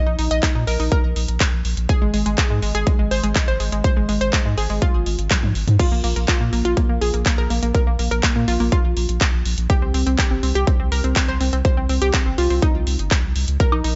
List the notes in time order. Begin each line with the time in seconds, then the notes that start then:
0.07 A#1 D#4
0.19 A#1 D#4, open hi-hat
0.31 A#1 D#5, closed hi-hat
0.43 D#4, kick, clap, closed hi-hat
0.55 A#2 D#4
0.67 A#1 A#4, open hi-hat
0.80 A#1 D#4, open hi-hat
0.92 A#4, kick, closed hi-hat
1.04 A#1
1.16 A#1, open hi-hat
1.28 A#1, closed hi-hat
1.40 kick, clap, closed hi-hat
1.53 A#1
1.65 A#1, open hi-hat
1.77 A#1, closed hi-hat
1.89 G#4, kick, closed hi-hat
2.02 G#1 G#3
2.14 G#1 G#3, open hi-hat
2.26 G#1 G#3, closed hi-hat
2.38 G#4, kick, clap, closed hi-hat
2.50 G#2 G#3
2.62 G#1 G#3, open hi-hat
2.75 G#1 G#4, closed hi-hat
2.87 G#3, kick, closed hi-hat
2.99 G#1 G#3
3.11 G#1 C5, open hi-hat
3.23 G#1 G#3, closed hi-hat
3.35 G#3, kick, clap, closed hi-hat
3.48 G#1 C5
3.60 G#1 G#3, open hi-hat
3.72 G#1 G#3, closed hi-hat
3.84 C5, kick, closed hi-hat
3.97 G#1 G#3
4.09 G#1 G#3, open hi-hat
4.21 G#1 C5, closed hi-hat
4.33 G#3, kick, clap, closed hi-hat
4.45 G#2 G#3
4.58 G#1 G#4, open hi-hat
4.70 G#1 G#3, open hi-hat
4.82 F4, kick, closed hi-hat
4.94 G#1
5.06 G#1, open hi-hat
5.19 G#1, closed hi-hat
5.31 kick, clap, closed hi-hat, high tom
5.43 G#2, high tom
5.55 G#1, open hi-hat
5.67 G#2, closed hi-hat, mid tom
5.79 F4, kick, closed hi-hat, crash
5.92 A#1 A#3
6.04 A#1 A#3, open hi-hat
6.16 A#1 A#3, closed hi-hat
6.28 F4, kick, clap, closed hi-hat
6.41 A#2 A#3
6.53 A#1 A#3, open hi-hat
6.65 A#1 F4, closed hi-hat
6.77 A#3, kick, closed hi-hat
6.89 A#1 A#3
7.01 A#1 G#4, open hi-hat
7.14 A#1 A#3, closed hi-hat
7.26 A#3, kick, clap, closed hi-hat
7.38 A#1 A#4
7.50 A#1 A#3, open hi-hat
7.63 A#1 A#3, closed hi-hat
7.75 A#4, kick, closed hi-hat
7.87 A#1 A#3
7.99 A#1 A#3, open hi-hat
8.11 A#1 A#4, closed hi-hat
8.23 A#3, kick, clap, closed hi-hat
8.36 A#2 A#3
8.48 A#1 F4, open hi-hat
8.60 A#1 A#3, open hi-hat
8.72 F4, kick, closed hi-hat
8.85 A#1
8.97 A#1, open hi-hat
9.09 A#1, closed hi-hat
9.21 kick, clap, closed hi-hat
9.33 A#1
9.45 A#1, open hi-hat
9.58 A#1, closed hi-hat
9.70 G4, kick, closed hi-hat
9.82 C2 C4
9.94 C2 C4, open hi-hat
10.06 C2 C4, closed hi-hat
10.19 G4, kick, clap, closed hi-hat
10.31 G1 C4
10.43 C2 C4, open hi-hat
10.55 C2 G4, closed hi-hat
10.67 C4, kick, closed hi-hat
10.80 C2 C4
10.92 C2 A#4, open hi-hat
11.04 C2 C4, closed hi-hat
11.16 C4, kick, clap, closed hi-hat
11.28 C2 C5
11.41 C2 C4, open hi-hat
11.53 C2 C4, closed hi-hat
11.65 C5, kick, closed hi-hat
11.77 C2 C4
11.89 C2 C4, open hi-hat
12.02 C2 G4, closed hi-hat
12.14 C4, kick, clap, closed hi-hat
12.26 G1 C4
12.38 C2 F4, open hi-hat
12.50 C2 C4, open hi-hat
12.62 D#4, kick, closed hi-hat
12.75 C2
12.87 C2, open hi-hat
12.99 G1, closed hi-hat
13.11 kick, clap, closed hi-hat
13.24 C2
13.36 C2, open hi-hat
13.48 C#2, closed hi-hat
13.60 A#4, kick, closed hi-hat
13.72 A#1 D#4, high woodblock
13.84 A#1 D#4, open hi-hat